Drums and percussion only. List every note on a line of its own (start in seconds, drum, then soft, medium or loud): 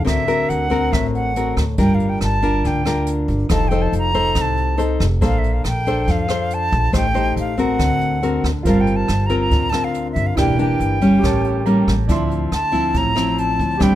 0.07 kick medium
0.07 cross-stick medium
0.07 closed hi-hat soft
0.29 closed hi-hat soft
0.50 closed hi-hat soft
0.71 kick soft
0.71 closed hi-hat soft
0.93 kick medium
0.93 cross-stick medium
0.93 closed hi-hat soft
1.15 closed hi-hat soft
1.36 closed hi-hat soft
1.57 kick soft
1.57 cross-stick medium
1.57 closed hi-hat soft
1.78 kick medium
1.78 closed hi-hat soft
2.00 closed hi-hat soft
2.21 cross-stick soft
2.21 closed hi-hat soft
2.43 kick soft
2.43 closed hi-hat soft
2.64 kick medium
2.64 closed hi-hat soft
2.85 cross-stick soft
2.85 closed hi-hat soft
3.06 closed hi-hat soft
3.28 kick soft
3.28 closed hi-hat soft
3.49 kick medium
3.49 cross-stick medium
3.49 closed hi-hat soft
3.71 closed hi-hat soft
3.93 closed hi-hat soft
4.14 kick soft
4.14 closed hi-hat soft
4.35 kick medium
4.35 cross-stick soft
4.35 closed hi-hat soft
4.57 closed hi-hat soft
4.79 closed hi-hat soft
5.00 kick soft
5.00 cross-stick soft
5.00 closed hi-hat soft
5.22 kick medium
5.22 closed hi-hat soft
5.44 closed hi-hat soft
5.64 cross-stick medium
5.64 closed hi-hat soft
5.86 kick soft
5.86 closed hi-hat soft
6.07 kick soft
6.07 closed hi-hat soft
6.28 cross-stick soft
6.28 closed hi-hat soft
6.50 closed hi-hat soft
6.72 kick soft
6.72 closed hi-hat soft
6.93 kick medium
6.93 cross-stick medium
6.93 closed hi-hat soft
7.16 closed hi-hat soft
7.37 closed hi-hat soft
7.58 kick soft
7.58 closed hi-hat soft
7.79 kick medium
7.79 cross-stick soft
7.79 closed hi-hat soft
8.01 closed hi-hat soft
8.23 closed hi-hat soft
8.44 kick soft
8.44 cross-stick medium
8.44 closed hi-hat soft
8.65 kick medium
8.65 closed hi-hat soft
8.87 closed hi-hat soft
9.08 cross-stick soft
9.08 closed hi-hat soft
9.30 kick soft
9.30 closed hi-hat soft
9.51 kick medium
9.51 closed hi-hat soft
9.72 cross-stick medium
9.72 closed hi-hat soft
9.94 closed hi-hat soft
10.16 kick soft
10.16 closed hi-hat soft
10.37 kick medium
10.37 cross-stick medium
10.37 closed hi-hat soft
10.59 closed hi-hat soft
10.80 closed hi-hat soft
11.02 kick soft
11.02 closed hi-hat soft
11.23 kick medium
11.23 cross-stick medium
11.23 closed hi-hat soft
11.44 closed hi-hat soft
11.66 closed hi-hat soft
11.87 kick soft
11.87 cross-stick medium
11.87 closed hi-hat soft
12.09 kick medium
12.09 closed hi-hat soft
12.31 closed hi-hat soft
12.52 cross-stick soft
12.52 closed hi-hat soft
12.73 kick soft
12.73 closed hi-hat soft
12.94 kick medium
12.94 closed hi-hat soft
13.16 cross-stick medium
13.16 closed hi-hat soft
13.38 closed hi-hat soft
13.59 kick soft
13.59 closed hi-hat soft
13.81 kick medium
13.81 cross-stick medium
13.81 closed hi-hat soft